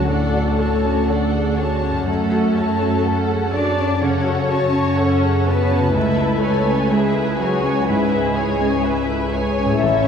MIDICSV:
0, 0, Header, 1, 8, 480
1, 0, Start_track
1, 0, Tempo, 988468
1, 1010, Time_signature, 4, 2, 24, 8
1, 1486, Tempo, 967742
1, 4967, End_track
2, 0, Start_track
2, 0, Title_t, "Violin section"
2, 0, Program_c, 0, 48
2, 38, Note_on_c, 0, 74, 41
2, 39, Note_on_c, 0, 78, 40
2, 269, Note_off_c, 0, 74, 0
2, 269, Note_off_c, 0, 78, 0
2, 286, Note_on_c, 0, 81, 34
2, 288, Note_on_c, 0, 73, 35
2, 530, Note_off_c, 0, 81, 0
2, 531, Note_off_c, 0, 73, 0
2, 532, Note_on_c, 0, 78, 35
2, 533, Note_on_c, 0, 74, 35
2, 763, Note_on_c, 0, 81, 36
2, 766, Note_on_c, 0, 73, 35
2, 772, Note_off_c, 0, 74, 0
2, 772, Note_off_c, 0, 78, 0
2, 1003, Note_on_c, 0, 69, 37
2, 1004, Note_on_c, 0, 78, 36
2, 1006, Note_off_c, 0, 81, 0
2, 1007, Note_off_c, 0, 73, 0
2, 1228, Note_off_c, 0, 69, 0
2, 1228, Note_off_c, 0, 78, 0
2, 1237, Note_on_c, 0, 73, 33
2, 1239, Note_on_c, 0, 81, 32
2, 1480, Note_off_c, 0, 73, 0
2, 1480, Note_off_c, 0, 81, 0
2, 1482, Note_on_c, 0, 69, 37
2, 1482, Note_on_c, 0, 78, 38
2, 1721, Note_on_c, 0, 81, 35
2, 1722, Note_on_c, 0, 73, 37
2, 1724, Note_off_c, 0, 69, 0
2, 1724, Note_off_c, 0, 78, 0
2, 1962, Note_off_c, 0, 73, 0
2, 1962, Note_off_c, 0, 81, 0
2, 1962, Note_on_c, 0, 78, 41
2, 1964, Note_on_c, 0, 69, 43
2, 2187, Note_off_c, 0, 78, 0
2, 2188, Note_off_c, 0, 69, 0
2, 2205, Note_on_c, 0, 73, 36
2, 2207, Note_on_c, 0, 81, 38
2, 2447, Note_off_c, 0, 73, 0
2, 2447, Note_on_c, 0, 69, 38
2, 2447, Note_on_c, 0, 78, 41
2, 2448, Note_off_c, 0, 81, 0
2, 2687, Note_off_c, 0, 69, 0
2, 2687, Note_off_c, 0, 78, 0
2, 2687, Note_on_c, 0, 81, 39
2, 2688, Note_on_c, 0, 73, 38
2, 2920, Note_on_c, 0, 71, 42
2, 2922, Note_on_c, 0, 76, 42
2, 2924, Note_off_c, 0, 73, 0
2, 2924, Note_off_c, 0, 81, 0
2, 3142, Note_off_c, 0, 71, 0
2, 3143, Note_off_c, 0, 76, 0
2, 3159, Note_on_c, 0, 73, 37
2, 3160, Note_on_c, 0, 80, 37
2, 3392, Note_on_c, 0, 76, 42
2, 3395, Note_on_c, 0, 71, 40
2, 3400, Note_off_c, 0, 73, 0
2, 3400, Note_off_c, 0, 80, 0
2, 3638, Note_off_c, 0, 76, 0
2, 3639, Note_on_c, 0, 73, 42
2, 3640, Note_off_c, 0, 71, 0
2, 3640, Note_on_c, 0, 80, 42
2, 3874, Note_on_c, 0, 71, 47
2, 3874, Note_on_c, 0, 76, 47
2, 3882, Note_off_c, 0, 73, 0
2, 3883, Note_off_c, 0, 80, 0
2, 4102, Note_off_c, 0, 71, 0
2, 4102, Note_off_c, 0, 76, 0
2, 4116, Note_on_c, 0, 80, 40
2, 4120, Note_on_c, 0, 73, 43
2, 4353, Note_on_c, 0, 71, 45
2, 4353, Note_on_c, 0, 76, 45
2, 4359, Note_off_c, 0, 80, 0
2, 4360, Note_off_c, 0, 73, 0
2, 4590, Note_on_c, 0, 73, 45
2, 4594, Note_on_c, 0, 80, 41
2, 4597, Note_off_c, 0, 71, 0
2, 4597, Note_off_c, 0, 76, 0
2, 4828, Note_off_c, 0, 73, 0
2, 4833, Note_on_c, 0, 76, 51
2, 4834, Note_on_c, 0, 73, 52
2, 4840, Note_off_c, 0, 80, 0
2, 4967, Note_off_c, 0, 73, 0
2, 4967, Note_off_c, 0, 76, 0
2, 4967, End_track
3, 0, Start_track
3, 0, Title_t, "Violin section"
3, 0, Program_c, 1, 48
3, 39, Note_on_c, 1, 69, 51
3, 768, Note_off_c, 1, 69, 0
3, 1008, Note_on_c, 1, 69, 61
3, 1705, Note_off_c, 1, 69, 0
3, 1724, Note_on_c, 1, 74, 55
3, 1964, Note_off_c, 1, 74, 0
3, 1967, Note_on_c, 1, 73, 50
3, 2686, Note_on_c, 1, 71, 51
3, 2688, Note_off_c, 1, 73, 0
3, 2918, Note_off_c, 1, 71, 0
3, 2920, Note_on_c, 1, 69, 58
3, 3396, Note_on_c, 1, 68, 57
3, 3399, Note_off_c, 1, 69, 0
3, 3639, Note_on_c, 1, 66, 54
3, 3640, Note_off_c, 1, 68, 0
3, 3877, Note_on_c, 1, 68, 58
3, 3883, Note_off_c, 1, 66, 0
3, 4599, Note_off_c, 1, 68, 0
3, 4840, Note_on_c, 1, 73, 75
3, 4967, Note_off_c, 1, 73, 0
3, 4967, End_track
4, 0, Start_track
4, 0, Title_t, "Grand piano"
4, 0, Program_c, 2, 0
4, 0, Control_c, 2, 64, 127
4, 0, Note_on_c, 2, 38, 38
4, 0, Note_on_c, 2, 61, 29
4, 0, Note_on_c, 2, 66, 30
4, 0, Note_on_c, 2, 68, 24
4, 0, Note_on_c, 2, 69, 32
4, 43, Note_on_c, 2, 45, 30
4, 118, Note_off_c, 2, 61, 0
4, 163, Note_off_c, 2, 66, 0
4, 163, Note_on_c, 2, 66, 31
4, 239, Note_off_c, 2, 45, 0
4, 287, Note_off_c, 2, 69, 0
4, 287, Note_on_c, 2, 69, 31
4, 361, Note_off_c, 2, 66, 0
4, 408, Note_on_c, 2, 61, 31
4, 483, Note_off_c, 2, 69, 0
4, 532, Note_on_c, 2, 69, 35
4, 603, Note_off_c, 2, 61, 0
4, 652, Note_off_c, 2, 68, 0
4, 652, Note_on_c, 2, 68, 28
4, 724, Note_off_c, 2, 69, 0
4, 770, Note_on_c, 2, 69, 31
4, 772, Note_off_c, 2, 68, 0
4, 885, Note_on_c, 2, 61, 30
4, 961, Note_off_c, 2, 69, 0
4, 1007, Note_off_c, 2, 61, 0
4, 1008, Note_on_c, 2, 42, 40
4, 1018, Control_c, 2, 64, 0
4, 1021, Note_off_c, 2, 38, 0
4, 1100, Control_c, 2, 64, 127
4, 1125, Note_on_c, 2, 66, 32
4, 1247, Note_on_c, 2, 69, 33
4, 1317, Note_off_c, 2, 66, 0
4, 1366, Note_on_c, 2, 61, 30
4, 1437, Note_off_c, 2, 69, 0
4, 1482, Note_on_c, 2, 69, 34
4, 1557, Note_off_c, 2, 61, 0
4, 1602, Note_on_c, 2, 68, 25
4, 1676, Note_off_c, 2, 69, 0
4, 1721, Note_on_c, 2, 69, 34
4, 1724, Note_off_c, 2, 68, 0
4, 1842, Note_on_c, 2, 61, 33
4, 1914, Note_off_c, 2, 69, 0
4, 1944, Note_off_c, 2, 42, 0
4, 1958, Note_on_c, 2, 49, 33
4, 2035, Note_off_c, 2, 61, 0
4, 2071, Note_on_c, 2, 66, 32
4, 2153, Note_off_c, 2, 49, 0
4, 2194, Note_on_c, 2, 69, 33
4, 2271, Note_off_c, 2, 66, 0
4, 2312, Note_on_c, 2, 61, 32
4, 2393, Note_off_c, 2, 69, 0
4, 2437, Note_on_c, 2, 69, 38
4, 2513, Note_off_c, 2, 61, 0
4, 2564, Note_on_c, 2, 68, 30
4, 2634, Note_off_c, 2, 69, 0
4, 2681, Note_on_c, 2, 69, 33
4, 2685, Note_off_c, 2, 68, 0
4, 2797, Note_on_c, 2, 61, 32
4, 2873, Note_off_c, 2, 69, 0
4, 2915, Note_on_c, 2, 37, 47
4, 2919, Note_off_c, 2, 61, 0
4, 2931, Control_c, 2, 64, 0
4, 2997, Control_c, 2, 64, 127
4, 3034, Note_on_c, 2, 64, 34
4, 3155, Note_on_c, 2, 71, 38
4, 3229, Note_off_c, 2, 64, 0
4, 3276, Note_on_c, 2, 61, 35
4, 3350, Note_off_c, 2, 71, 0
4, 3396, Note_on_c, 2, 71, 39
4, 3471, Note_off_c, 2, 61, 0
4, 3516, Note_on_c, 2, 69, 29
4, 3592, Note_off_c, 2, 71, 0
4, 3637, Note_on_c, 2, 71, 38
4, 3640, Note_off_c, 2, 69, 0
4, 3755, Note_on_c, 2, 61, 39
4, 3833, Note_off_c, 2, 71, 0
4, 3860, Note_off_c, 2, 37, 0
4, 3884, Note_on_c, 2, 44, 37
4, 3952, Note_off_c, 2, 61, 0
4, 4003, Note_on_c, 2, 64, 36
4, 4076, Note_off_c, 2, 44, 0
4, 4121, Note_on_c, 2, 71, 36
4, 4195, Note_off_c, 2, 64, 0
4, 4238, Note_on_c, 2, 61, 38
4, 4314, Note_off_c, 2, 71, 0
4, 4359, Note_on_c, 2, 71, 44
4, 4431, Note_off_c, 2, 61, 0
4, 4482, Note_on_c, 2, 69, 34
4, 4552, Note_off_c, 2, 71, 0
4, 4601, Note_on_c, 2, 71, 37
4, 4602, Note_off_c, 2, 69, 0
4, 4725, Note_on_c, 2, 61, 37
4, 4795, Note_off_c, 2, 71, 0
4, 4846, Note_off_c, 2, 61, 0
4, 4846, Note_on_c, 2, 33, 52
4, 4852, Control_c, 2, 64, 0
4, 4932, Control_c, 2, 64, 127
4, 4967, Note_off_c, 2, 33, 0
4, 4967, End_track
5, 0, Start_track
5, 0, Title_t, "Viola section"
5, 0, Program_c, 3, 48
5, 42, Note_on_c, 3, 69, 37
5, 45, Note_on_c, 3, 62, 38
5, 271, Note_off_c, 3, 69, 0
5, 272, Note_off_c, 3, 62, 0
5, 286, Note_on_c, 3, 62, 33
5, 286, Note_on_c, 3, 66, 32
5, 521, Note_off_c, 3, 62, 0
5, 527, Note_on_c, 3, 62, 36
5, 527, Note_on_c, 3, 69, 35
5, 530, Note_off_c, 3, 66, 0
5, 761, Note_off_c, 3, 62, 0
5, 767, Note_on_c, 3, 62, 35
5, 767, Note_on_c, 3, 66, 34
5, 769, Note_off_c, 3, 69, 0
5, 1007, Note_on_c, 3, 61, 39
5, 1008, Note_off_c, 3, 62, 0
5, 1008, Note_off_c, 3, 66, 0
5, 1008, Note_on_c, 3, 69, 40
5, 1230, Note_off_c, 3, 61, 0
5, 1230, Note_off_c, 3, 69, 0
5, 1244, Note_on_c, 3, 66, 32
5, 1246, Note_off_c, 3, 66, 0
5, 1246, Note_on_c, 3, 66, 35
5, 1481, Note_on_c, 3, 69, 40
5, 1483, Note_on_c, 3, 61, 35
5, 1484, Note_off_c, 3, 66, 0
5, 1723, Note_off_c, 3, 69, 0
5, 1724, Note_off_c, 3, 61, 0
5, 1724, Note_on_c, 3, 66, 35
5, 1725, Note_off_c, 3, 66, 0
5, 1725, Note_on_c, 3, 66, 39
5, 1960, Note_on_c, 3, 61, 41
5, 1961, Note_on_c, 3, 69, 39
5, 1964, Note_off_c, 3, 66, 0
5, 2186, Note_off_c, 3, 61, 0
5, 2186, Note_off_c, 3, 69, 0
5, 2200, Note_on_c, 3, 66, 36
5, 2201, Note_off_c, 3, 66, 0
5, 2201, Note_on_c, 3, 66, 37
5, 2439, Note_on_c, 3, 69, 36
5, 2440, Note_on_c, 3, 61, 38
5, 2445, Note_off_c, 3, 66, 0
5, 2682, Note_off_c, 3, 69, 0
5, 2682, Note_on_c, 3, 66, 38
5, 2683, Note_off_c, 3, 61, 0
5, 2683, Note_off_c, 3, 66, 0
5, 2683, Note_on_c, 3, 66, 37
5, 2919, Note_on_c, 3, 64, 42
5, 2919, Note_on_c, 3, 71, 46
5, 2921, Note_off_c, 3, 66, 0
5, 3141, Note_off_c, 3, 64, 0
5, 3142, Note_off_c, 3, 71, 0
5, 3154, Note_on_c, 3, 73, 40
5, 3155, Note_on_c, 3, 71, 38
5, 3385, Note_off_c, 3, 71, 0
5, 3391, Note_on_c, 3, 64, 42
5, 3391, Note_on_c, 3, 71, 42
5, 3397, Note_off_c, 3, 73, 0
5, 3637, Note_on_c, 3, 68, 43
5, 3637, Note_on_c, 3, 73, 41
5, 3638, Note_off_c, 3, 64, 0
5, 3638, Note_off_c, 3, 71, 0
5, 3878, Note_on_c, 3, 64, 43
5, 3878, Note_on_c, 3, 71, 45
5, 3882, Note_off_c, 3, 68, 0
5, 3882, Note_off_c, 3, 73, 0
5, 4104, Note_off_c, 3, 64, 0
5, 4104, Note_off_c, 3, 71, 0
5, 4119, Note_on_c, 3, 68, 42
5, 4119, Note_on_c, 3, 73, 40
5, 4356, Note_on_c, 3, 64, 44
5, 4357, Note_on_c, 3, 71, 43
5, 4360, Note_off_c, 3, 68, 0
5, 4360, Note_off_c, 3, 73, 0
5, 4596, Note_on_c, 3, 73, 42
5, 4597, Note_on_c, 3, 68, 42
5, 4599, Note_off_c, 3, 64, 0
5, 4599, Note_off_c, 3, 71, 0
5, 4840, Note_on_c, 3, 69, 54
5, 4842, Note_off_c, 3, 68, 0
5, 4842, Note_off_c, 3, 73, 0
5, 4967, Note_off_c, 3, 69, 0
5, 4967, End_track
6, 0, Start_track
6, 0, Title_t, "Harp"
6, 0, Program_c, 4, 46
6, 0, Note_on_c, 4, 66, 28
6, 921, Note_on_c, 4, 42, 35
6, 925, Note_off_c, 4, 66, 0
6, 964, Note_on_c, 4, 66, 31
6, 987, Note_on_c, 4, 69, 29
6, 2832, Note_on_c, 4, 49, 40
6, 2843, Note_off_c, 4, 42, 0
6, 2855, Note_on_c, 4, 61, 30
6, 2878, Note_on_c, 4, 64, 34
6, 2887, Note_off_c, 4, 66, 0
6, 2900, Note_on_c, 4, 71, 31
6, 2910, Note_off_c, 4, 69, 0
6, 4753, Note_on_c, 4, 45, 43
6, 4767, Note_off_c, 4, 49, 0
6, 4775, Note_on_c, 4, 57, 38
6, 4789, Note_off_c, 4, 61, 0
6, 4791, Note_off_c, 4, 64, 0
6, 4797, Note_on_c, 4, 64, 36
6, 4820, Note_on_c, 4, 69, 37
6, 4835, Note_off_c, 4, 71, 0
6, 4967, Note_off_c, 4, 45, 0
6, 4967, Note_off_c, 4, 57, 0
6, 4967, Note_off_c, 4, 64, 0
6, 4967, Note_off_c, 4, 69, 0
6, 4967, End_track
7, 0, Start_track
7, 0, Title_t, "Cello section"
7, 0, Program_c, 5, 48
7, 44, Note_on_c, 5, 57, 46
7, 756, Note_off_c, 5, 57, 0
7, 1004, Note_on_c, 5, 57, 55
7, 1703, Note_off_c, 5, 57, 0
7, 1720, Note_on_c, 5, 62, 59
7, 1958, Note_on_c, 5, 61, 53
7, 1962, Note_off_c, 5, 62, 0
7, 2684, Note_off_c, 5, 61, 0
7, 2685, Note_on_c, 5, 59, 62
7, 2921, Note_on_c, 5, 57, 57
7, 2922, Note_off_c, 5, 59, 0
7, 3390, Note_off_c, 5, 57, 0
7, 3396, Note_on_c, 5, 56, 55
7, 3639, Note_on_c, 5, 54, 57
7, 3640, Note_off_c, 5, 56, 0
7, 3878, Note_off_c, 5, 54, 0
7, 3878, Note_on_c, 5, 56, 58
7, 4599, Note_off_c, 5, 56, 0
7, 4842, Note_on_c, 5, 61, 77
7, 4967, Note_off_c, 5, 61, 0
7, 4967, End_track
8, 0, Start_track
8, 0, Title_t, "Double bass section"
8, 0, Program_c, 6, 48
8, 0, Note_on_c, 6, 38, 42
8, 989, Note_off_c, 6, 38, 0
8, 1008, Note_on_c, 6, 42, 46
8, 2902, Note_off_c, 6, 42, 0
8, 2924, Note_on_c, 6, 37, 47
8, 4825, Note_off_c, 6, 37, 0
8, 4844, Note_on_c, 6, 33, 55
8, 4967, Note_off_c, 6, 33, 0
8, 4967, End_track
0, 0, End_of_file